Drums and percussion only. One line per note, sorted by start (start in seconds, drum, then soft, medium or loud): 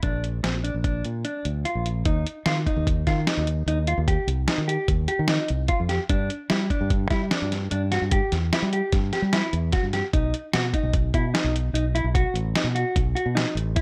0.03 kick loud
0.03 closed hi-hat medium
0.24 closed hi-hat medium
0.44 snare medium
0.44 closed hi-hat medium
0.65 closed hi-hat medium
0.84 kick medium
0.84 closed hi-hat medium
1.05 closed hi-hat medium
1.25 closed hi-hat medium
1.45 closed hi-hat medium
1.65 closed hi-hat medium
1.86 closed hi-hat medium
2.05 kick loud
2.05 closed hi-hat medium
2.27 closed hi-hat medium
2.46 snare medium
2.46 closed hi-hat medium
2.67 kick medium
2.67 closed hi-hat soft
2.87 kick loud
2.87 closed hi-hat medium
3.07 kick medium
3.07 snare soft
3.07 closed hi-hat medium
3.27 snare medium
3.27 closed hi-hat medium
3.47 closed hi-hat medium
3.68 closed hi-hat medium
3.87 closed hi-hat medium
4.08 kick loud
4.08 closed hi-hat medium
4.28 closed hi-hat medium
4.48 snare medium
4.48 closed hi-hat medium
4.69 closed hi-hat medium
4.88 kick loud
4.88 closed hi-hat medium
5.08 closed hi-hat medium
5.28 snare loud
5.28 closed hi-hat medium
5.48 closed hi-hat medium
5.68 kick medium
5.68 closed hi-hat medium
5.89 snare soft
5.89 closed hi-hat medium
6.09 kick loud
6.09 closed hi-hat medium
6.30 closed hi-hat medium
6.50 snare loud
6.50 closed hi-hat medium
6.70 kick medium
6.70 closed hi-hat medium
6.90 kick loud
6.90 closed hi-hat medium
7.11 kick medium
7.11 snare soft
7.11 closed hi-hat medium
7.31 snare loud
7.31 closed hi-hat medium
7.52 snare soft
7.52 closed hi-hat medium
7.71 closed hi-hat medium
7.92 snare soft
7.92 closed hi-hat medium
8.11 kick loud
8.11 closed hi-hat medium
8.32 snare soft
8.32 closed hi-hat medium
8.53 snare loud
8.53 closed hi-hat medium
8.73 closed hi-hat medium
8.92 kick loud
8.92 snare soft
8.92 closed hi-hat medium
9.13 snare soft
9.13 closed hi-hat medium
9.33 snare medium
9.33 closed hi-hat medium
9.53 closed hi-hat medium
9.72 kick medium
9.72 snare soft
9.72 closed hi-hat medium
9.93 snare soft
9.93 closed hi-hat medium
10.13 kick loud
10.13 closed hi-hat medium
10.34 closed hi-hat medium
10.53 snare loud
10.53 closed hi-hat medium
10.74 kick medium
10.74 closed hi-hat medium
10.94 kick loud
10.94 closed hi-hat medium
11.14 kick medium
11.14 closed hi-hat medium
11.35 snare medium
11.35 closed hi-hat medium
11.56 closed hi-hat medium
11.75 closed hi-hat medium
11.96 closed hi-hat medium
12.15 kick loud
12.15 closed hi-hat medium
12.36 closed hi-hat medium
12.56 snare loud
12.56 closed hi-hat medium
12.76 closed hi-hat medium
12.96 kick medium
12.96 closed hi-hat medium
13.17 closed hi-hat medium
13.37 snare loud
13.37 closed hi-hat medium
13.57 closed hi-hat medium
13.76 kick medium
13.76 closed hi-hat medium